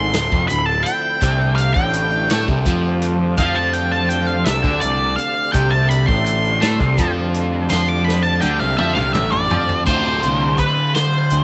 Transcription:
Already playing: G#1 D2 G#2 D3 F3 C4 E4 A4 C6
0.13 D1 D2, snare, closed hi-hat
0.32 F1 F2, kick
0.48 D1 D2 B5, closed hi-hat, shaker
0.66 A5
0.83 G5, closed hi-hat
1.21 C2 D2 C3 D3 D4 G4, kick, closed hi-hat, shaker
1.55 F5, closed hi-hat
1.74 A1 A2 G5, kick
1.93 closed hi-hat, shaker
2.11 shaker
2.30 A2 A3, snare, closed hi-hat
2.48 C2 C3, kick, shaker
2.66 F2 F3, kick, closed hi-hat, shaker
3.02 closed hi-hat
3.37 F2 F3 F5, kick, closed hi-hat, shaker
3.55 A5
3.73 G5, closed hi-hat
3.92 A5
4.09 G5, closed hi-hat, shaker
4.27 F5, shaker
4.44 C2 C3 E5, snare, closed hi-hat
4.64 D2 D3, kick, shaker
4.80 C2 C3 D5, closed hi-hat, shaker
5.16 F5, closed hi-hat
5.52 C2 C3 G5, kick, closed hi-hat, shaker
5.71 A5
5.89 B5, closed hi-hat
6.07 A1 A2 C6, kick
6.26 closed hi-hat, shaker
6.44 shaker
6.61 A2 A3, snare, closed hi-hat
6.80 C2 C3, kick, shaker
6.98 F2 F3, kick, closed hi-hat, shaker
7.34 closed hi-hat
7.69 F2 F3 C6, snare, shaker
7.89 D6
8.04 B5, snare
8.22 A5, shaker
8.41 D2 D3 G5, high tom, shaker
8.59 C2 C3 F5, shaker
8.77 F2 F3 E5, mid tom
8.95 C2 C3 F5, mid tom, shaker
9.13 A1 A2 E5, mid tom, shaker
9.32 D5, floor tom, shaker
9.49 F2 F3, floor tom, shaker
9.68 floor tom, shaker
9.85 D2 A2 D3 A3 C4 F4 C5, kick, closed hi-hat, shaker
10.23 C2, closed hi-hat
10.58 B4, kick, closed hi-hat, shaker
10.95 C5, snare, closed hi-hat
11.13 shaker
11.30 D2, closed hi-hat, shaker

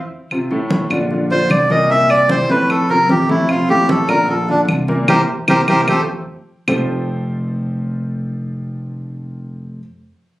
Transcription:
0.31 C3 C4 F4, high conga, claves
0.51 A2 A3 A4, high conga
0.71 high conga
0.90 A#1 D3 D4 F4, high conga, claves
1.11 D3 D4 F4, high conga
1.30 D3 D4 F4 C5, high conga
1.50 C2 D5, high conga, claves
1.70 A#2 A#3 A#4 D#5, high conga
1.90 A#2 A#3 A#4 E5, high conga
2.10 D5, high conga, claves
2.29 E3 E4 G4 C5, high conga
2.49 F2 A2 A3 A4 B4, high conga
2.70 A4, high conga, claves
2.89 C3 C4 F4 A#4, high conga
3.09 F2 C3 C4 F4 G4, high conga
3.29 A2 A3 E4 A4, high conga
3.49 C3 C4 F4, high conga, claves
3.69 A2 A3 G4 A4, high conga
3.89 A4, high conga
4.08 A#1 D3 D4 F4 A#4, high conga, claves
4.28 D3 D4 F4 A4, high conga
4.48 D3 D4 F4, high conga
4.68 C2, high conga, claves
4.88 A#2 A#3 A#4, high conga
5.08 C2 A#3 C4 E4 G4 A#4 C5, high conga, claves
5.48 C2 A#3 C4 E4 G4 A#4 C5, high conga, claves
5.68 C2 A#3 C4 E4 G4 A#4 C5, high conga, claves
5.87 F2 A3 C4 F4 G4 A4 C5, high conga, claves
6.68 F1 F3 C4 F4 G4 A4 C5, low conga, claves

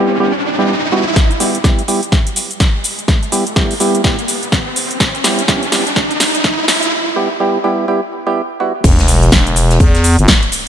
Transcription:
Already playing: G3 B3 E4 G4, riser
0.20 G3 B3 E4 G4
0.59 G3 B3 E4 G4
0.92 G3 B3 E4 F#4
1.16 kick, snare, riser, cabasa
1.31 closed hi-hat, cabasa
1.40 G3 B3 E4 G4, open hi-hat, cabasa
1.55 closed hi-hat, cabasa
1.64 G3 B3 E4 G4, kick, snare, cabasa
1.79 closed hi-hat, cabasa
1.88 G3 B3 E4 G4, open hi-hat, cabasa
2.03 closed hi-hat, cabasa
2.12 kick, snare, cabasa
2.27 closed hi-hat, cabasa
2.36 open hi-hat, cabasa
2.51 closed hi-hat, cabasa
2.60 kick, snare, cabasa
2.84 open hi-hat, cabasa
2.99 closed hi-hat, cabasa
3.08 kick, snare, cabasa
3.23 closed hi-hat, cabasa
3.32 G3 B3 E4 G4, open hi-hat, cabasa
3.47 closed hi-hat, cabasa
3.56 G3 B3 E4 G4, kick, snare, cabasa
3.71 open hi-hat, cabasa
3.80 G3 B3 E4 G4, open hi-hat, cabasa
3.95 closed hi-hat, cabasa
4.04 G3 B3 E4 G4, kick, snare, cabasa
4.19 closed hi-hat, cabasa
4.28 open hi-hat, cabasa
4.43 closed hi-hat, cabasa
4.52 kick, snare, cabasa
4.76 open hi-hat, cabasa
4.91 closed hi-hat, cabasa
5.00 kick, snare, cabasa
5.15 closed hi-hat, cabasa
5.24 G3 B3 E4 G4, snare, open hi-hat, cabasa
5.39 closed hi-hat, cabasa
5.48 G3 B3 E4 G4, kick, snare, cabasa
5.63 closed hi-hat, cabasa
5.72 G3 B3 E4 G4, snare, open hi-hat, cabasa
5.87 closed hi-hat, cabasa
5.96 kick, snare, cabasa
6.11 closed hi-hat, cabasa
6.20 snare, open hi-hat, cabasa
6.35 closed hi-hat, cabasa
6.44 kick, snare, cabasa
6.68 snare, open hi-hat, cabasa
6.83 closed hi-hat, cabasa
7.16 G3 B3 E4 G4
7.40 G3 B3 E4 G4
7.64 G3 B3 E4 G4
7.88 G3 B3 E4 G4
8.27 G3 B3 E4 G4
8.60 G3 B3 E4 F#4
8.84 E1, kick, closed hi-hat, crash, sub drop, cabasa
8.99 snare, closed hi-hat, cabasa
9.08 open hi-hat, cabasa
9.23 closed hi-hat, cabasa
9.32 E1, kick, snare, closed hi-hat, cabasa
9.47 closed hi-hat, cabasa
9.56 closed hi-hat, open hi-hat, cabasa
9.70 snare, closed hi-hat, cabasa
9.80 E2, kick, closed hi-hat, cabasa
9.95 snare, closed hi-hat, cabasa
10.04 closed hi-hat, open hi-hat, cabasa
10.19 G1, closed hi-hat, cabasa
10.28 kick, snare, closed hi-hat, cabasa
10.43 closed hi-hat
10.52 closed hi-hat, open hi-hat, cabasa

